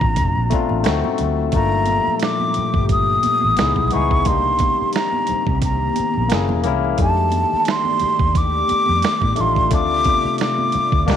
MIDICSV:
0, 0, Header, 1, 7, 480
1, 0, Start_track
1, 0, Tempo, 681818
1, 1078, Time_signature, 4, 2, 24, 8
1, 7861, End_track
2, 0, Start_track
2, 0, Title_t, "Flute"
2, 0, Program_c, 0, 73
2, 0, Note_on_c, 0, 82, 91
2, 846, Note_off_c, 0, 82, 0
2, 1091, Note_on_c, 0, 82, 92
2, 1536, Note_off_c, 0, 82, 0
2, 1571, Note_on_c, 0, 86, 95
2, 2016, Note_off_c, 0, 86, 0
2, 2052, Note_on_c, 0, 87, 102
2, 2729, Note_off_c, 0, 87, 0
2, 2729, Note_on_c, 0, 87, 66
2, 2767, Note_on_c, 0, 85, 90
2, 2777, Note_off_c, 0, 87, 0
2, 3003, Note_on_c, 0, 84, 100
2, 3014, Note_off_c, 0, 85, 0
2, 3481, Note_off_c, 0, 84, 0
2, 3484, Note_on_c, 0, 82, 84
2, 3933, Note_off_c, 0, 82, 0
2, 3973, Note_on_c, 0, 82, 70
2, 4658, Note_off_c, 0, 82, 0
2, 4941, Note_on_c, 0, 81, 96
2, 5423, Note_on_c, 0, 84, 102
2, 5434, Note_off_c, 0, 81, 0
2, 5895, Note_on_c, 0, 86, 103
2, 5905, Note_off_c, 0, 84, 0
2, 6622, Note_on_c, 0, 84, 98
2, 6632, Note_off_c, 0, 86, 0
2, 6850, Note_off_c, 0, 84, 0
2, 6855, Note_on_c, 0, 86, 112
2, 7298, Note_off_c, 0, 86, 0
2, 7334, Note_on_c, 0, 86, 100
2, 7815, Note_on_c, 0, 84, 83
2, 7825, Note_off_c, 0, 86, 0
2, 7861, Note_off_c, 0, 84, 0
2, 7861, End_track
3, 0, Start_track
3, 0, Title_t, "Tine electric piano"
3, 0, Program_c, 1, 4
3, 0, Control_c, 1, 64, 127
3, 0, Note_on_c, 1, 57, 72
3, 0, Note_on_c, 1, 60, 63
3, 0, Note_on_c, 1, 62, 67
3, 0, Note_on_c, 1, 65, 77
3, 351, Note_off_c, 1, 57, 0
3, 351, Note_on_c, 1, 57, 85
3, 364, Note_off_c, 1, 60, 0
3, 364, Note_on_c, 1, 60, 75
3, 374, Note_off_c, 1, 62, 0
3, 374, Note_on_c, 1, 62, 78
3, 383, Note_off_c, 1, 65, 0
3, 383, Note_on_c, 1, 65, 91
3, 580, Note_off_c, 1, 57, 0
3, 588, Note_on_c, 1, 57, 87
3, 590, Note_off_c, 1, 60, 0
3, 598, Note_on_c, 1, 60, 80
3, 606, Note_off_c, 1, 62, 0
3, 607, Control_c, 1, 64, 0
3, 607, Note_on_c, 1, 63, 78
3, 611, Note_off_c, 1, 65, 0
3, 621, Note_on_c, 1, 66, 89
3, 738, Control_c, 1, 64, 127
3, 984, Note_off_c, 1, 57, 0
3, 989, Note_off_c, 1, 60, 0
3, 994, Note_off_c, 1, 63, 0
3, 1001, Note_off_c, 1, 66, 0
3, 1069, Note_on_c, 1, 57, 58
3, 1081, Note_on_c, 1, 62, 64
3, 1088, Control_c, 1, 64, 0
3, 1093, Note_on_c, 1, 65, 65
3, 1094, Note_off_c, 1, 57, 0
3, 1103, Note_on_c, 1, 57, 77
3, 1114, Note_on_c, 1, 58, 67
3, 1195, Control_c, 1, 64, 127
3, 1807, Note_off_c, 1, 62, 0
3, 1813, Note_off_c, 1, 65, 0
3, 1818, Note_off_c, 1, 57, 0
3, 1824, Note_off_c, 1, 58, 0
3, 2513, Note_on_c, 1, 59, 73
3, 2526, Note_on_c, 1, 63, 67
3, 2527, Control_c, 1, 64, 0
3, 2537, Note_on_c, 1, 64, 65
3, 2547, Note_on_c, 1, 68, 80
3, 2635, Control_c, 1, 64, 127
3, 2711, Note_off_c, 1, 59, 0
3, 2718, Note_off_c, 1, 63, 0
3, 2723, Note_off_c, 1, 64, 0
3, 2728, Note_off_c, 1, 68, 0
3, 2758, Note_on_c, 1, 59, 69
3, 2767, Note_on_c, 1, 63, 65
3, 2778, Note_on_c, 1, 64, 68
3, 2789, Note_on_c, 1, 68, 79
3, 2944, Note_off_c, 1, 59, 0
3, 2949, Note_off_c, 1, 63, 0
3, 2954, Note_off_c, 1, 64, 0
3, 2960, Note_off_c, 1, 68, 0
3, 2996, Note_on_c, 1, 58, 70
3, 3007, Control_c, 1, 64, 0
3, 3008, Note_on_c, 1, 62, 66
3, 3020, Note_on_c, 1, 63, 66
3, 3028, Note_on_c, 1, 67, 80
3, 3121, Control_c, 1, 64, 127
3, 3725, Note_off_c, 1, 58, 0
3, 3731, Note_off_c, 1, 62, 0
3, 3736, Note_off_c, 1, 63, 0
3, 3741, Note_off_c, 1, 67, 0
3, 4428, Note_on_c, 1, 58, 75
3, 4443, Note_on_c, 1, 61, 68
3, 4448, Control_c, 1, 64, 0
3, 4455, Note_on_c, 1, 64, 67
3, 4463, Note_on_c, 1, 68, 87
3, 4558, Control_c, 1, 64, 127
3, 4628, Note_off_c, 1, 58, 0
3, 4636, Note_off_c, 1, 61, 0
3, 4642, Note_off_c, 1, 64, 0
3, 4646, Note_off_c, 1, 68, 0
3, 4669, Note_on_c, 1, 58, 84
3, 4681, Note_on_c, 1, 61, 75
3, 4689, Note_on_c, 1, 64, 81
3, 4702, Note_on_c, 1, 70, 100
3, 4860, Note_off_c, 1, 58, 0
3, 4866, Note_off_c, 1, 61, 0
3, 4869, Note_off_c, 1, 64, 0
3, 4876, Note_off_c, 1, 70, 0
3, 4910, Note_on_c, 1, 57, 75
3, 4919, Note_on_c, 1, 62, 69
3, 4926, Control_c, 1, 64, 0
3, 4933, Note_on_c, 1, 63, 70
3, 4944, Note_on_c, 1, 67, 81
3, 5052, Control_c, 1, 64, 127
3, 5641, Note_off_c, 1, 57, 0
3, 5646, Note_off_c, 1, 62, 0
3, 5653, Note_off_c, 1, 63, 0
3, 5658, Note_off_c, 1, 67, 0
3, 6585, Note_on_c, 1, 57, 74
3, 6597, Note_on_c, 1, 62, 69
3, 6609, Note_on_c, 1, 63, 69
3, 6620, Note_on_c, 1, 65, 83
3, 6778, Note_off_c, 1, 57, 0
3, 6784, Note_off_c, 1, 62, 0
3, 6790, Note_off_c, 1, 63, 0
3, 6795, Note_off_c, 1, 65, 0
3, 6833, Note_on_c, 1, 57, 71
3, 6843, Note_on_c, 1, 60, 62
3, 6847, Control_c, 1, 64, 0
3, 6856, Note_on_c, 1, 62, 66
3, 6865, Note_on_c, 1, 65, 83
3, 6959, Control_c, 1, 64, 127
3, 7563, Note_off_c, 1, 57, 0
3, 7568, Note_off_c, 1, 60, 0
3, 7574, Note_off_c, 1, 62, 0
3, 7579, Note_off_c, 1, 65, 0
3, 7789, Note_on_c, 1, 58, 100
3, 7799, Note_on_c, 1, 62, 93
3, 7809, Control_c, 1, 64, 0
3, 7812, Note_on_c, 1, 63, 94
3, 7821, Note_on_c, 1, 67, 97
3, 7861, Note_off_c, 1, 58, 0
3, 7861, Note_off_c, 1, 62, 0
3, 7861, Note_off_c, 1, 63, 0
3, 7861, Note_off_c, 1, 67, 0
3, 7861, End_track
4, 0, Start_track
4, 0, Title_t, "Ambient pad"
4, 0, Program_c, 2, 92
4, 0, Note_on_c, 2, 46, 81
4, 0, Note_on_c, 2, 57, 75
4, 0, Note_on_c, 2, 62, 73
4, 0, Note_on_c, 2, 65, 90
4, 586, Note_off_c, 2, 62, 0
4, 586, Note_off_c, 2, 65, 0
4, 587, Note_off_c, 2, 57, 0
4, 600, Note_on_c, 2, 63, 79
4, 601, Note_on_c, 2, 60, 65
4, 603, Note_on_c, 2, 54, 65
4, 1061, Note_off_c, 2, 46, 0
4, 1074, Note_off_c, 2, 63, 0
4, 1074, Note_on_c, 2, 53, 79
4, 1075, Note_off_c, 2, 60, 0
4, 1076, Note_off_c, 2, 54, 0
4, 1077, Note_on_c, 2, 46, 75
4, 1077, Note_on_c, 2, 55, 69
4, 1079, Note_on_c, 2, 67, 86
4, 2502, Note_off_c, 2, 53, 0
4, 2503, Note_off_c, 2, 46, 0
4, 2503, Note_off_c, 2, 55, 0
4, 2504, Note_off_c, 2, 67, 0
4, 2524, Note_on_c, 2, 56, 66
4, 2524, Note_on_c, 2, 64, 77
4, 2525, Note_on_c, 2, 59, 66
4, 2527, Note_on_c, 2, 49, 67
4, 2993, Note_on_c, 2, 51, 78
4, 2995, Note_on_c, 2, 58, 68
4, 2995, Note_on_c, 2, 60, 73
4, 2995, Note_on_c, 2, 67, 89
4, 2996, Note_off_c, 2, 56, 0
4, 2996, Note_off_c, 2, 64, 0
4, 2997, Note_off_c, 2, 59, 0
4, 2998, Note_off_c, 2, 49, 0
4, 4421, Note_off_c, 2, 51, 0
4, 4422, Note_off_c, 2, 60, 0
4, 4422, Note_off_c, 2, 67, 0
4, 4440, Note_on_c, 2, 56, 66
4, 4440, Note_on_c, 2, 66, 82
4, 4442, Note_on_c, 2, 52, 73
4, 4897, Note_off_c, 2, 58, 0
4, 4914, Note_off_c, 2, 56, 0
4, 4914, Note_off_c, 2, 66, 0
4, 4915, Note_off_c, 2, 52, 0
4, 4919, Note_on_c, 2, 51, 81
4, 4919, Note_on_c, 2, 67, 93
4, 4919, Note_on_c, 2, 74, 78
4, 4922, Note_on_c, 2, 57, 73
4, 6819, Note_off_c, 2, 51, 0
4, 6819, Note_off_c, 2, 67, 0
4, 6821, Note_off_c, 2, 57, 0
4, 6839, Note_on_c, 2, 48, 80
4, 6843, Note_on_c, 2, 57, 74
4, 6843, Note_on_c, 2, 65, 88
4, 7791, Note_off_c, 2, 57, 0
4, 7791, Note_off_c, 2, 65, 0
4, 7798, Note_on_c, 2, 58, 67
4, 7798, Note_on_c, 2, 63, 89
4, 7861, Note_off_c, 2, 48, 0
4, 7861, Note_off_c, 2, 58, 0
4, 7861, Note_off_c, 2, 63, 0
4, 7861, Note_off_c, 2, 74, 0
4, 7861, End_track
5, 0, Start_track
5, 0, Title_t, "Fingered electric bass"
5, 0, Program_c, 3, 33
5, 17, Note_on_c, 3, 33, 81
5, 105, Note_off_c, 3, 33, 0
5, 126, Note_on_c, 3, 29, 85
5, 231, Note_off_c, 3, 29, 0
5, 258, Note_on_c, 3, 34, 82
5, 346, Note_off_c, 3, 34, 0
5, 498, Note_on_c, 3, 33, 82
5, 586, Note_off_c, 3, 33, 0
5, 610, Note_on_c, 3, 38, 92
5, 713, Note_off_c, 3, 38, 0
5, 849, Note_on_c, 3, 38, 82
5, 1046, Note_off_c, 3, 38, 0
5, 1084, Note_on_c, 3, 31, 109
5, 1391, Note_off_c, 3, 31, 0
5, 1934, Note_on_c, 3, 31, 87
5, 2225, Note_off_c, 3, 31, 0
5, 2426, Note_on_c, 3, 33, 80
5, 2511, Note_off_c, 3, 33, 0
5, 2539, Note_on_c, 3, 37, 92
5, 2639, Note_off_c, 3, 37, 0
5, 2654, Note_on_c, 3, 35, 80
5, 2744, Note_off_c, 3, 35, 0
5, 2783, Note_on_c, 3, 37, 85
5, 3006, Note_off_c, 3, 37, 0
5, 3006, Note_on_c, 3, 36, 100
5, 3312, Note_off_c, 3, 36, 0
5, 3856, Note_on_c, 3, 36, 85
5, 4146, Note_off_c, 3, 36, 0
5, 4346, Note_on_c, 3, 34, 79
5, 4431, Note_off_c, 3, 34, 0
5, 4455, Note_on_c, 3, 30, 92
5, 4588, Note_off_c, 3, 30, 0
5, 4588, Note_on_c, 3, 28, 71
5, 4693, Note_off_c, 3, 28, 0
5, 4693, Note_on_c, 3, 36, 90
5, 4888, Note_off_c, 3, 36, 0
5, 4924, Note_on_c, 3, 41, 101
5, 5231, Note_off_c, 3, 41, 0
5, 5774, Note_on_c, 3, 39, 85
5, 6065, Note_off_c, 3, 39, 0
5, 6260, Note_on_c, 3, 41, 86
5, 6347, Note_off_c, 3, 41, 0
5, 6495, Note_on_c, 3, 45, 84
5, 6585, Note_off_c, 3, 45, 0
5, 6608, Note_on_c, 3, 33, 84
5, 6846, Note_off_c, 3, 33, 0
5, 6846, Note_on_c, 3, 38, 100
5, 7152, Note_off_c, 3, 38, 0
5, 7694, Note_on_c, 3, 38, 87
5, 7784, Note_off_c, 3, 38, 0
5, 7806, Note_on_c, 3, 36, 100
5, 7861, Note_off_c, 3, 36, 0
5, 7861, End_track
6, 0, Start_track
6, 0, Title_t, "Muted fingered electric bass strokes"
6, 1458, Note_on_c, 9, 29, 48
6, 1529, Note_off_c, 9, 29, 0
6, 1813, Note_on_c, 9, 29, 44
6, 1884, Note_off_c, 9, 29, 0
6, 2294, Note_on_c, 9, 29, 44
6, 2365, Note_off_c, 9, 29, 0
6, 3390, Note_on_c, 9, 29, 46
6, 3461, Note_off_c, 9, 29, 0
6, 3741, Note_on_c, 9, 29, 46
6, 3811, Note_off_c, 9, 29, 0
6, 4219, Note_on_c, 9, 29, 44
6, 4289, Note_off_c, 9, 29, 0
6, 5303, Note_on_c, 9, 29, 50
6, 5373, Note_off_c, 9, 29, 0
6, 5649, Note_on_c, 9, 29, 44
6, 5719, Note_off_c, 9, 29, 0
6, 6134, Note_on_c, 9, 29, 46
6, 6204, Note_off_c, 9, 29, 0
6, 7216, Note_on_c, 9, 29, 50
6, 7286, Note_off_c, 9, 29, 0
6, 7570, Note_on_c, 9, 29, 45
6, 7640, Note_off_c, 9, 29, 0
6, 7861, End_track
7, 0, Start_track
7, 0, Title_t, "Drums"
7, 8, Note_on_c, 9, 36, 104
7, 79, Note_off_c, 9, 36, 0
7, 114, Note_on_c, 9, 42, 84
7, 118, Note_on_c, 9, 36, 96
7, 184, Note_off_c, 9, 42, 0
7, 188, Note_off_c, 9, 36, 0
7, 355, Note_on_c, 9, 62, 26
7, 355, Note_on_c, 9, 63, 57
7, 357, Note_on_c, 9, 42, 73
7, 367, Note_on_c, 9, 36, 89
7, 426, Note_off_c, 9, 62, 0
7, 426, Note_off_c, 9, 63, 0
7, 427, Note_off_c, 9, 42, 0
7, 437, Note_off_c, 9, 36, 0
7, 486, Note_on_c, 9, 63, 67
7, 557, Note_off_c, 9, 63, 0
7, 591, Note_on_c, 9, 42, 85
7, 606, Note_on_c, 9, 26, 86
7, 607, Note_on_c, 9, 38, 109
7, 662, Note_off_c, 9, 42, 0
7, 676, Note_off_c, 9, 26, 0
7, 677, Note_off_c, 9, 38, 0
7, 732, Note_on_c, 9, 63, 64
7, 732, Note_on_c, 9, 64, 63
7, 803, Note_off_c, 9, 63, 0
7, 803, Note_off_c, 9, 64, 0
7, 831, Note_on_c, 9, 42, 68
7, 839, Note_on_c, 9, 64, 57
7, 901, Note_off_c, 9, 42, 0
7, 910, Note_off_c, 9, 64, 0
7, 1070, Note_on_c, 9, 42, 87
7, 1076, Note_on_c, 9, 36, 109
7, 1140, Note_off_c, 9, 42, 0
7, 1146, Note_off_c, 9, 36, 0
7, 1306, Note_on_c, 9, 42, 63
7, 1315, Note_on_c, 9, 62, 31
7, 1315, Note_on_c, 9, 63, 69
7, 1377, Note_off_c, 9, 42, 0
7, 1386, Note_off_c, 9, 62, 0
7, 1386, Note_off_c, 9, 63, 0
7, 1545, Note_on_c, 9, 42, 67
7, 1556, Note_on_c, 9, 62, 31
7, 1566, Note_on_c, 9, 26, 73
7, 1567, Note_on_c, 9, 38, 99
7, 1615, Note_off_c, 9, 42, 0
7, 1626, Note_off_c, 9, 62, 0
7, 1637, Note_off_c, 9, 26, 0
7, 1638, Note_off_c, 9, 38, 0
7, 1689, Note_on_c, 9, 63, 61
7, 1760, Note_off_c, 9, 63, 0
7, 1788, Note_on_c, 9, 42, 60
7, 1801, Note_on_c, 9, 64, 55
7, 1859, Note_off_c, 9, 42, 0
7, 1872, Note_off_c, 9, 64, 0
7, 1927, Note_on_c, 9, 36, 99
7, 1998, Note_off_c, 9, 36, 0
7, 2035, Note_on_c, 9, 42, 79
7, 2037, Note_on_c, 9, 36, 94
7, 2106, Note_off_c, 9, 42, 0
7, 2107, Note_off_c, 9, 36, 0
7, 2274, Note_on_c, 9, 42, 75
7, 2275, Note_on_c, 9, 62, 27
7, 2275, Note_on_c, 9, 63, 58
7, 2345, Note_off_c, 9, 42, 0
7, 2345, Note_off_c, 9, 62, 0
7, 2345, Note_off_c, 9, 63, 0
7, 2400, Note_on_c, 9, 63, 62
7, 2471, Note_off_c, 9, 63, 0
7, 2511, Note_on_c, 9, 42, 85
7, 2526, Note_on_c, 9, 26, 86
7, 2527, Note_on_c, 9, 38, 104
7, 2581, Note_off_c, 9, 42, 0
7, 2596, Note_off_c, 9, 26, 0
7, 2597, Note_off_c, 9, 38, 0
7, 2646, Note_on_c, 9, 36, 81
7, 2648, Note_on_c, 9, 63, 62
7, 2648, Note_on_c, 9, 64, 65
7, 2717, Note_off_c, 9, 36, 0
7, 2719, Note_off_c, 9, 63, 0
7, 2719, Note_off_c, 9, 64, 0
7, 2749, Note_on_c, 9, 42, 70
7, 2755, Note_on_c, 9, 62, 28
7, 2755, Note_on_c, 9, 64, 64
7, 2820, Note_off_c, 9, 42, 0
7, 2825, Note_off_c, 9, 62, 0
7, 2825, Note_off_c, 9, 64, 0
7, 2893, Note_on_c, 9, 36, 97
7, 2963, Note_off_c, 9, 36, 0
7, 2993, Note_on_c, 9, 42, 88
7, 2998, Note_on_c, 9, 36, 111
7, 3063, Note_off_c, 9, 42, 0
7, 3068, Note_off_c, 9, 36, 0
7, 3229, Note_on_c, 9, 42, 65
7, 3237, Note_on_c, 9, 62, 32
7, 3237, Note_on_c, 9, 63, 67
7, 3238, Note_on_c, 9, 36, 97
7, 3300, Note_off_c, 9, 42, 0
7, 3308, Note_off_c, 9, 62, 0
7, 3308, Note_off_c, 9, 63, 0
7, 3309, Note_off_c, 9, 36, 0
7, 3469, Note_on_c, 9, 42, 66
7, 3474, Note_on_c, 9, 62, 33
7, 3490, Note_on_c, 9, 26, 76
7, 3491, Note_on_c, 9, 38, 94
7, 3539, Note_off_c, 9, 42, 0
7, 3545, Note_off_c, 9, 62, 0
7, 3560, Note_off_c, 9, 26, 0
7, 3561, Note_off_c, 9, 38, 0
7, 3608, Note_on_c, 9, 63, 63
7, 3678, Note_off_c, 9, 63, 0
7, 3709, Note_on_c, 9, 42, 64
7, 3724, Note_on_c, 9, 62, 27
7, 3724, Note_on_c, 9, 64, 60
7, 3779, Note_off_c, 9, 42, 0
7, 3794, Note_off_c, 9, 62, 0
7, 3794, Note_off_c, 9, 64, 0
7, 3848, Note_on_c, 9, 36, 100
7, 3919, Note_off_c, 9, 36, 0
7, 3954, Note_on_c, 9, 42, 86
7, 3957, Note_on_c, 9, 36, 99
7, 3967, Note_on_c, 9, 62, 28
7, 4024, Note_off_c, 9, 42, 0
7, 4028, Note_off_c, 9, 36, 0
7, 4037, Note_off_c, 9, 62, 0
7, 4194, Note_on_c, 9, 42, 77
7, 4194, Note_on_c, 9, 62, 28
7, 4194, Note_on_c, 9, 63, 55
7, 4264, Note_off_c, 9, 42, 0
7, 4264, Note_off_c, 9, 62, 0
7, 4264, Note_off_c, 9, 63, 0
7, 4320, Note_on_c, 9, 63, 69
7, 4390, Note_off_c, 9, 63, 0
7, 4430, Note_on_c, 9, 62, 32
7, 4433, Note_on_c, 9, 42, 83
7, 4447, Note_on_c, 9, 26, 84
7, 4448, Note_on_c, 9, 38, 110
7, 4501, Note_off_c, 9, 62, 0
7, 4503, Note_off_c, 9, 42, 0
7, 4518, Note_off_c, 9, 26, 0
7, 4519, Note_off_c, 9, 38, 0
7, 4568, Note_on_c, 9, 63, 64
7, 4568, Note_on_c, 9, 64, 62
7, 4639, Note_off_c, 9, 63, 0
7, 4639, Note_off_c, 9, 64, 0
7, 4672, Note_on_c, 9, 42, 73
7, 4677, Note_on_c, 9, 64, 61
7, 4742, Note_off_c, 9, 42, 0
7, 4748, Note_off_c, 9, 64, 0
7, 4911, Note_on_c, 9, 62, 25
7, 4912, Note_on_c, 9, 42, 85
7, 4917, Note_on_c, 9, 36, 106
7, 4981, Note_off_c, 9, 62, 0
7, 4983, Note_off_c, 9, 42, 0
7, 4988, Note_off_c, 9, 36, 0
7, 5151, Note_on_c, 9, 42, 63
7, 5153, Note_on_c, 9, 63, 66
7, 5221, Note_off_c, 9, 42, 0
7, 5223, Note_off_c, 9, 63, 0
7, 5387, Note_on_c, 9, 42, 69
7, 5408, Note_on_c, 9, 26, 79
7, 5409, Note_on_c, 9, 38, 100
7, 5457, Note_off_c, 9, 42, 0
7, 5478, Note_off_c, 9, 26, 0
7, 5480, Note_off_c, 9, 38, 0
7, 5526, Note_on_c, 9, 63, 63
7, 5596, Note_off_c, 9, 63, 0
7, 5628, Note_on_c, 9, 42, 60
7, 5633, Note_on_c, 9, 62, 29
7, 5633, Note_on_c, 9, 64, 60
7, 5698, Note_off_c, 9, 42, 0
7, 5703, Note_off_c, 9, 62, 0
7, 5703, Note_off_c, 9, 64, 0
7, 5769, Note_on_c, 9, 36, 102
7, 5839, Note_off_c, 9, 36, 0
7, 5878, Note_on_c, 9, 36, 96
7, 5879, Note_on_c, 9, 62, 29
7, 5880, Note_on_c, 9, 42, 85
7, 5949, Note_off_c, 9, 36, 0
7, 5950, Note_off_c, 9, 62, 0
7, 5951, Note_off_c, 9, 42, 0
7, 6112, Note_on_c, 9, 62, 27
7, 6112, Note_on_c, 9, 63, 60
7, 6118, Note_on_c, 9, 42, 77
7, 6182, Note_off_c, 9, 62, 0
7, 6182, Note_off_c, 9, 63, 0
7, 6189, Note_off_c, 9, 42, 0
7, 6239, Note_on_c, 9, 63, 68
7, 6309, Note_off_c, 9, 63, 0
7, 6353, Note_on_c, 9, 42, 84
7, 6368, Note_on_c, 9, 26, 87
7, 6369, Note_on_c, 9, 38, 110
7, 6424, Note_off_c, 9, 42, 0
7, 6438, Note_off_c, 9, 26, 0
7, 6439, Note_off_c, 9, 38, 0
7, 6487, Note_on_c, 9, 36, 83
7, 6489, Note_on_c, 9, 63, 63
7, 6489, Note_on_c, 9, 64, 62
7, 6558, Note_off_c, 9, 36, 0
7, 6559, Note_off_c, 9, 63, 0
7, 6559, Note_off_c, 9, 64, 0
7, 6591, Note_on_c, 9, 42, 71
7, 6596, Note_on_c, 9, 62, 28
7, 6596, Note_on_c, 9, 64, 63
7, 6661, Note_off_c, 9, 42, 0
7, 6666, Note_off_c, 9, 62, 0
7, 6666, Note_off_c, 9, 64, 0
7, 6733, Note_on_c, 9, 36, 91
7, 6803, Note_off_c, 9, 36, 0
7, 6833, Note_on_c, 9, 42, 91
7, 6834, Note_on_c, 9, 62, 28
7, 6838, Note_on_c, 9, 36, 112
7, 6904, Note_off_c, 9, 42, 0
7, 6904, Note_off_c, 9, 62, 0
7, 6909, Note_off_c, 9, 36, 0
7, 7071, Note_on_c, 9, 42, 66
7, 7077, Note_on_c, 9, 62, 31
7, 7077, Note_on_c, 9, 63, 65
7, 7078, Note_on_c, 9, 36, 97
7, 7141, Note_off_c, 9, 42, 0
7, 7148, Note_off_c, 9, 62, 0
7, 7148, Note_off_c, 9, 63, 0
7, 7149, Note_off_c, 9, 36, 0
7, 7309, Note_on_c, 9, 42, 66
7, 7318, Note_on_c, 9, 62, 31
7, 7330, Note_on_c, 9, 26, 78
7, 7331, Note_on_c, 9, 38, 94
7, 7379, Note_off_c, 9, 42, 0
7, 7388, Note_off_c, 9, 62, 0
7, 7400, Note_off_c, 9, 26, 0
7, 7401, Note_off_c, 9, 38, 0
7, 7450, Note_on_c, 9, 63, 63
7, 7521, Note_off_c, 9, 63, 0
7, 7549, Note_on_c, 9, 42, 63
7, 7562, Note_on_c, 9, 64, 61
7, 7619, Note_off_c, 9, 42, 0
7, 7632, Note_off_c, 9, 64, 0
7, 7689, Note_on_c, 9, 36, 100
7, 7760, Note_off_c, 9, 36, 0
7, 7799, Note_on_c, 9, 36, 108
7, 7801, Note_on_c, 9, 49, 79
7, 7811, Note_on_c, 9, 38, 100
7, 7861, Note_off_c, 9, 36, 0
7, 7861, Note_off_c, 9, 38, 0
7, 7861, Note_off_c, 9, 49, 0
7, 7861, End_track
0, 0, End_of_file